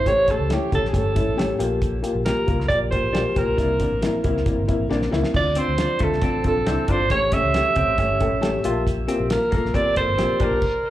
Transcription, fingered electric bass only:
0.06 0.31 A1 loud
0.39 0.55 C#2 medium
0.72 0.81 C#2 medium
0.82 0.91 A1 medium
0.94 1.19 G1 medium
1.27 1.52 A1 medium
1.60 2.01 A#1 medium
2.15 2.32 A#1 medium
2.48 2.57 C2 medium
2.59 2.68 C2 medium
2.70 2.95 A#1 medium
3.04 3.12 A1 medium
3.15 3.23 A#1 medium
3.36 3.45 A#1 medium
3.48 3.56 B1 medium
3.58 3.83 C2 medium
3.92 4.08 A1 medium
4.25 4.33 C2 medium
4.36 4.44 C2 medium
4.46 4.55 A1 medium
4.58 4.66 G1 medium
4.80 4.88 A1 medium
4.90 5.07 A#1 medium
5.13 5.21 C#2 medium
5.35 5.59 D2 medium
5.68 5.84 D2 medium
6.01 6.09 D2 medium
6.12 6.20 C2 medium
6.22 6.47 A1 medium
6.56 6.64 A#1 medium
6.67 6.75 C2 medium
6.89 6.97 G1 medium
7.00 7.08 G#1 medium
7.10 7.35 A1 medium
7.44 7.60 C#2 medium
7.77 7.85 C#2 medium
7.88 7.96 A1 medium
7.98 8.23 G1 medium
8.32 8.57 A1 medium
8.65 9.06 A#1 medium
9.20 9.36 A#1 medium
9.53 9.61 A#1 medium
9.64 9.72 A#1 medium
9.75 9.99 A1 medium
10.08 10.16 G1 medium
10.18 10.27 A#1 medium
10.41 10.49 A#1 medium
10.51 10.59 B1 medium

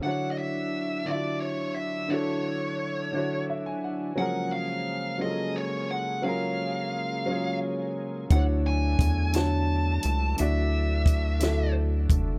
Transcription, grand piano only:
0.01 0.76 D3 medium
0.01 0.77 D4 medium
0.01 0.77 E4 medium
0.06 0.78 F#4 medium
0.06 0.79 C#5 medium
1.05 1.79 D3 medium
1.05 1.80 D4 medium
1.05 1.81 E4 medium
1.09 1.14 F4 soft
1.09 1.82 E5 medium
1.16 1.85 F#4 medium
2.08 2.83 D3 medium
2.08 2.83 D4 medium
2.08 2.84 E4 medium
2.12 2.85 F#4 medium
2.12 2.85 A4 medium
3.12 3.86 D3 medium
3.12 3.87 D4 medium
3.12 3.88 E4 medium
3.17 3.88 F#4 medium
3.17 3.89 C#5 medium
3.50 3.65 E5 medium
3.66 3.82 G#5 medium
3.84 4.15 F#5 medium
4.16 4.91 F3 medium
4.16 4.90 F#3 medium
4.16 4.90 C#4 medium
4.20 4.92 G#4 medium
4.20 4.92 A#4 medium
5.18 5.93 F#3 medium
5.18 5.93 C#4 medium
5.18 5.94 F4 medium
5.22 5.95 G#4 medium
5.22 5.28 A4 medium
5.30 5.99 A#4 medium
6.22 6.96 F#3 medium
6.22 6.97 C#4 medium
6.22 6.98 F4 medium
6.26 6.98 G#4 medium
6.26 6.99 A#4 medium
7.26 8.00 F#3 medium
7.26 8.01 C#4 medium
7.26 8.02 F4 medium
7.30 8.02 G#4 medium
7.30 8.03 C#5 medium
8.30 9.04 D3 medium
8.30 9.05 D4 medium
8.30 9.05 E4 medium
8.34 9.06 F#4 medium
8.34 9.07 C#5 medium
9.33 10.07 D3 medium
9.33 10.08 D4 medium
9.33 10.08 E4 medium
9.37 10.09 F#4 medium
9.37 10.10 C#5 medium
10.36 11.10 D3 medium
10.36 11.11 D4 medium
10.36 11.12 E4 medium
10.41 11.13 F#4 medium
10.41 11.13 D5 medium
11.39 12.14 D3 medium
11.39 12.14 D4 medium
11.39 12.15 E4 medium
11.43 12.16 F#4 medium
11.43 12.16 A4 medium

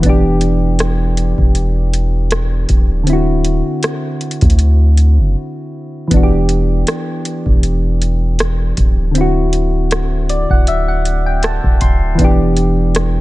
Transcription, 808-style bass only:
0.04 1.34 E1 loud
1.38 2.66 E1 loud
2.70 3.62 D1 loud
4.42 5.19 D2 loud
5.18 5.35 F#1 loud
6.11 6.84 E1 loud
7.46 8.73 E1 medium
8.78 10.46 D1 loud
10.50 11.60 D1 loud
11.64 11.80 D1 loud
11.81 12.18 D1 loud
12.19 13.21 E1 loud

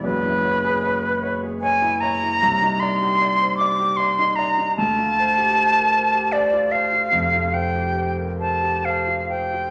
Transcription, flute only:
0.04 1.34 B4 loud
1.62 2.02 G#5 loud
2.01 2.81 A#5 loud
2.80 3.57 C6 loud
3.58 3.98 D6 medium
3.97 4.37 C6 loud
4.36 4.76 A#5 medium
4.77 6.34 A5 loud
6.32 6.73 D5 medium
6.72 7.55 F5 loud
7.54 8.16 G5 medium
8.40 8.86 A5 medium
8.85 9.29 F5 medium
9.29 9.70 G5 medium

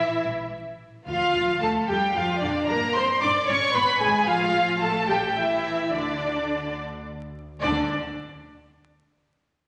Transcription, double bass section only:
0.25 0.90 A1 medium
1.06 1.14 D2 medium
1.33 1.41 D2 medium
1.61 1.69 D2 medium
1.88 1.96 F2 medium
2.14 2.22 F2 medium
2.41 2.49 F2 medium
2.68 2.76 G2 medium
2.95 3.03 G2 medium
3.21 3.29 G2 medium
3.48 3.56 G#1 medium
3.74 3.82 G#1 medium
4.01 4.09 G#1 medium
4.28 5.89 A1 medium
5.92 7.39 D2 soft
7.63 7.94 D2 medium

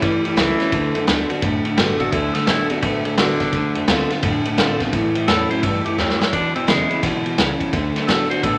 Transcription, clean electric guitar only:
0.02 0.23 A2 medium
0.02 0.23 E3 medium
0.25 0.36 A2 medium
0.25 0.37 E3 medium
0.37 0.58 A2 medium
0.37 0.58 F#3 medium
0.61 0.72 A2 medium
0.61 0.72 F#3 medium
0.73 0.93 D3 medium
0.73 0.93 A3 medium
0.95 1.06 D3 medium
0.95 1.06 A3 medium
1.07 1.28 D3 medium
1.07 1.28 B3 loud
1.30 1.41 D3 medium
1.30 1.42 B3 medium
1.42 1.63 D3 medium
1.42 1.63 A3 medium
1.65 1.76 D3 medium
1.65 1.77 A3 medium
1.77 1.98 D3 medium
1.77 1.98 B3 loud
1.99 2.11 D3 medium
1.99 2.12 B3 medium
2.12 2.33 D3 medium
2.12 2.33 A3 medium
2.35 2.46 D3 medium
2.35 2.47 A3 medium
2.47 2.68 D3 medium
2.47 2.68 B3 medium
2.70 2.82 D3 medium
2.70 2.82 B3 medium
2.83 3.03 D3 loud
2.83 3.03 A3 loud
3.05 3.16 D3 medium
3.05 3.17 A3 medium
3.17 3.38 D3 medium
3.17 3.38 B3 medium
3.40 3.52 D3 medium
3.40 3.52 B3 medium
3.53 3.73 D3 medium
3.53 3.73 A3 medium
3.75 3.87 D3 medium
3.75 3.87 A3 medium
3.88 4.08 D3 medium
3.88 4.09 B3 medium
4.11 4.22 D3 medium
4.11 4.22 B3 medium
4.23 4.43 D3 loud
4.23 4.44 A3 medium
4.46 4.57 D3 medium
4.46 4.57 A3 medium
4.59 4.79 D3 medium
4.59 4.79 B3 medium
4.81 4.92 D3 medium
4.81 4.92 B3 medium
4.93 5.13 A2 medium
4.93 5.13 E3 medium
5.16 5.27 A2 medium
5.16 5.27 E3 medium
5.28 5.48 A2 medium
5.28 5.48 F#3 medium
5.50 5.62 A2 medium
5.50 5.62 F#3 medium
5.63 5.83 A2 medium
5.63 5.83 E3 medium
5.85 5.97 A2 medium
5.85 5.97 E3 medium
5.98 6.18 A2 medium
5.98 6.18 F#3 medium
6.20 6.32 A2 medium
6.20 6.32 F#3 medium
6.33 6.53 E2 medium
6.33 6.53 B2 medium
6.55 6.66 E2 medium
6.55 6.67 B2 loud
6.68 6.88 E2 medium
6.68 6.88 C#3 loud
6.90 7.02 E2 medium
6.90 7.02 C#3 medium
7.03 7.23 E2 medium
7.03 7.23 B2 loud
7.26 7.37 E2 medium
7.26 7.37 B2 medium
7.38 7.58 E2 medium
7.38 7.59 C#3 medium
7.60 7.72 E2 medium
7.60 7.72 C#3 medium
7.73 7.93 D3 medium
7.73 7.93 A3 medium
7.96 8.07 D3 medium
7.96 8.07 A3 medium
8.08 8.28 D3 medium
8.08 8.29 B3 loud
8.30 8.42 D3 medium
8.30 8.42 B3 medium
8.43 8.58 D3 medium
8.43 8.58 A3 loud

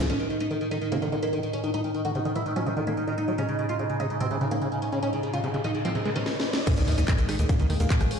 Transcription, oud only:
0.10 0.15 C#4 medium
0.20 0.25 D#3 medium
0.30 0.36 D#3 medium
0.40 0.46 D#4 medium
0.51 0.56 D#3 medium
0.61 0.67 D#3 medium
0.71 0.77 D#4 medium
0.81 0.87 D#3 medium
0.92 0.97 A#3 medium
1.02 1.08 D#3 medium
1.12 1.18 D#3 medium
1.23 1.28 A#3 medium
1.33 1.39 D#3 medium
1.43 1.49 D#3 medium
1.53 1.59 C#4 medium
1.64 1.69 D#3 medium
1.74 1.80 D#4 medium
1.84 1.90 D#3 medium
1.95 2.00 D#3 medium
2.05 2.10 F#4 medium
2.15 2.21 D#3 medium
2.25 2.31 D#3 medium
2.36 2.41 E4 medium
2.46 2.51 D#3 medium
2.56 2.62 C#4 medium
2.66 2.72 D#3 medium
2.77 2.82 D#3 medium
2.87 2.93 A#3 medium
2.97 3.03 D#3 medium
3.07 3.13 D#3 medium
3.18 3.23 D#4 medium
3.28 3.34 D#3 medium
3.38 3.44 C#4 loud
3.49 3.54 C#3 medium
3.59 3.64 C#3 medium
3.69 3.75 F4 medium
3.79 3.85 C#3 medium
3.90 3.95 C#3 medium
4.00 4.06 D#4 medium
4.10 4.16 C#3 medium
4.20 4.26 C4 medium
4.31 4.36 C#3 medium
4.41 4.47 C#3 medium
4.51 4.57 A#3 loud
4.62 4.67 C#3 medium
4.72 4.78 C#3 medium
4.82 4.88 C#4 medium
4.92 4.98 C#3 medium
5.03 5.08 C#4 medium
5.13 5.19 C#3 medium
5.23 5.29 C#3 medium
5.33 5.39 F4 medium
5.44 5.49 C#3 medium
5.54 5.60 C#3 medium
5.64 5.70 D#4 medium
5.75 5.80 C#3 medium
5.85 5.91 C4 loud
5.95 6.01 C#3 medium
6.05 6.11 C#3 medium
6.16 6.21 C#4 loud
6.67 6.73 C#4 loud
6.77 6.83 D#3 medium
6.88 6.93 D#3 medium
6.98 7.03 D#4 medium
7.08 7.14 D#3 medium
7.18 7.24 D#3 medium
7.29 7.34 D#4 medium
7.39 7.45 D#3 medium
7.49 7.55 A#3 loud
7.60 7.65 D#3 medium
7.70 7.75 D#3 medium
7.80 7.86 A#3 loud
7.90 7.96 D#3 medium
8.01 8.06 D#3 medium
8.11 8.17 C#4 medium

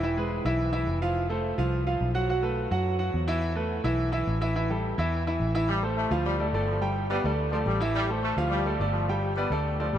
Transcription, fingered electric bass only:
0.00 0.39 E1 medium
0.45 0.84 B1 medium
0.87 1.52 F1 medium
1.58 1.97 C2 medium
2.01 2.66 B1 medium
2.71 3.10 F#2 loud
3.14 3.79 E2 medium
3.84 4.24 B1 medium
4.27 4.92 A1 medium
4.98 5.37 E2 loud
5.40 6.05 A1 medium
6.11 6.50 D2 medium
6.53 7.19 G1 medium
7.24 7.64 D2 medium
7.66 8.32 A1 loud
8.37 8.77 D2 medium
8.80 9.45 G1 medium
9.50 9.90 D2 loud
9.93 9.98 A1 medium

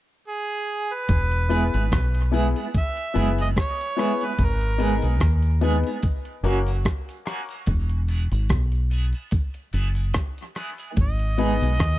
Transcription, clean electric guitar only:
1.50 1.63 G#3 medium
1.50 1.63 B3 medium
1.50 1.64 E4 medium
1.50 1.64 G#4 medium
1.74 1.82 G#3 soft
1.74 1.82 B3 medium
1.74 1.82 E4 medium
1.74 1.82 G#4 medium
2.34 2.46 G#3 medium
2.34 2.46 B3 medium
2.34 2.46 E4 medium
2.34 2.47 G#4 medium
2.57 2.65 G#3 medium
2.57 2.65 B3 medium
2.57 2.64 E4 medium
2.57 2.64 G#4 medium
3.15 3.28 G#3 medium
3.15 3.28 B3 medium
3.15 3.29 E4 medium
3.15 3.29 G#4 loud
3.39 3.47 G#3 medium
3.39 3.47 B3 medium
3.39 3.47 E4 medium
3.39 3.46 G#4 medium
3.98 4.11 G#3 medium
3.98 4.11 B3 medium
3.98 4.11 E4 medium
3.98 4.11 G#4 medium
4.22 4.30 G#3 medium
4.22 4.29 B3 medium
4.22 4.29 E4 medium
4.22 4.29 G#4 medium
4.80 4.93 G#3 medium
4.80 4.93 B3 medium
4.80 4.93 D#4 medium
4.80 4.94 G#4 medium
5.03 5.12 G#3 soft
5.03 5.12 B3 soft
5.03 5.11 D#4 soft
5.03 5.11 G#4 medium
5.63 5.76 G#3 medium
5.63 5.76 B3 medium
5.63 5.76 D#4 medium
5.63 5.76 G#4 medium
5.87 5.95 G#3 medium
5.87 5.94 B3 medium
5.87 5.94 D#4 medium
5.87 5.94 G#4 medium
6.45 6.58 F#3 medium
6.45 6.58 A#3 medium
6.45 6.59 C#4 medium
6.45 6.58 F#4 medium
6.68 6.76 F#3 soft
6.68 6.76 A#3 soft
6.68 6.76 C#4 medium
6.68 6.76 F#4 medium
7.27 7.40 F#3 medium
7.27 7.40 A#3 medium
7.27 7.41 C#4 medium
7.27 7.41 F#4 medium
7.50 7.59 F#3 soft
7.50 7.59 A#3 medium
7.50 7.58 C#4 medium
7.50 7.58 F#4 medium
8.09 8.23 G#3 medium
8.09 8.23 B3 medium
8.09 8.23 E4 medium
8.09 8.23 G#4 medium
8.33 8.41 G#3 soft
8.33 8.41 B3 medium
8.33 8.41 E4 medium
8.33 8.41 G#4 medium
8.92 9.05 G#3 medium
8.92 9.05 B3 medium
8.92 9.05 E4 medium
8.92 9.06 G#4 medium
9.14 9.23 G#3 medium
9.14 9.23 B3 medium
9.14 9.23 E4 medium
9.14 9.23 G#4 medium
9.73 9.87 G#3 medium
9.73 9.87 B3 medium
9.73 9.88 E4 loud
9.73 9.87 G#4 medium
9.96 10.06 G#3 medium
9.96 10.06 B3 medium
9.96 10.05 E4 medium
9.96 10.05 G#4 medium
10.56 10.69 G#3 medium
10.56 10.70 B3 medium
10.56 10.70 E4 medium
10.56 10.70 G#4 medium
10.80 10.89 G#3 medium
10.80 10.88 B3 medium
10.80 10.88 E4 medium
10.80 10.88 G#4 medium
11.39 11.52 G#3 medium
11.39 11.52 B3 medium
11.39 11.53 D#4 medium
11.39 11.53 G#4 medium
11.62 11.71 G#3 medium
11.62 11.71 B3 medium
11.62 11.71 D#4 medium
11.62 11.71 G#4 medium

